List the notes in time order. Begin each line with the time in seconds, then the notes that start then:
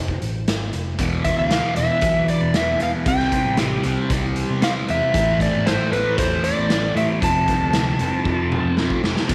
Already playing: F1
0.08 kick
0.22 A1, closed hi-hat
0.48 G#1, snare, closed hi-hat
0.73 F1, closed hi-hat
0.96 E1 E2 B2 E3 B3 G#4 B4, kick, closed hi-hat
1.00 E3
1.25 B2 E3 E5, kick, closed hi-hat
1.37 D2 F5, high conga
1.50 E2 B2 E3, snare, closed hi-hat
1.76 E1 B2 E3 E5, closed hi-hat, high conga, low conga
2.01 B1, kick, closed hi-hat
2.28 D5, closed hi-hat
2.41 E1, high conga
2.53 E2 B2 E3 E5, snare, closed hi-hat
2.79 E2 B2 E3 F5, closed hi-hat, low conga
2.94 high conga
3.05 C2 C3 G3 C4 G4 C5 G5, kick, closed hi-hat
3.20 snare
3.32 G3 C4, kick, closed hi-hat
3.46 A1, high conga
3.57 C3 G3 C4, snare, closed hi-hat
3.84 C2 G3 C4, closed hi-hat, high conga, low conga
4.10 C2, kick, closed hi-hat
4.36 closed hi-hat
4.50 C3, high conga
4.62 C3 G3 C4 F5, snare, closed hi-hat
4.87 E2 G3 C4 E5, closed hi-hat, low conga
5.01 high conga
5.13 A1 A2 E3 A3 A4, kick, closed hi-hat
5.39 E3 A3 D5, kick, closed hi-hat
5.53 G#1, high conga
5.66 A2 E3 A3 C5, snare, closed hi-hat
5.91 A1 E3 A3 B4, closed hi-hat, high conga, low conga
6.18 E2 C5, kick, closed hi-hat
6.44 D5, closed hi-hat
6.57 A1, high conga
6.68 A2 E3 A3, snare, closed hi-hat
6.95 A2 E3 A3 E5, closed hi-hat, low conga
7.10 high conga
7.21 F1 F2 C3 F3 A4 A5, kick, closed hi-hat
7.47 C3 F3, kick, closed hi-hat, low conga
7.61 D2, high conga
7.73 F2 C3 F3, snare, closed hi-hat, low conga
7.99 F1 C3 F3, closed hi-hat, high conga, low conga
8.25 F1, kick
8.52 mid tom
8.65 F2, high conga
8.77 F2 C3 F3, snare
8.90 kick, high conga
9.03 F1 C3 F3, snare, low conga
9.17 snare, high conga
9.28 E1 E2 B2 E3 G#3 G#4 B5, kick, crash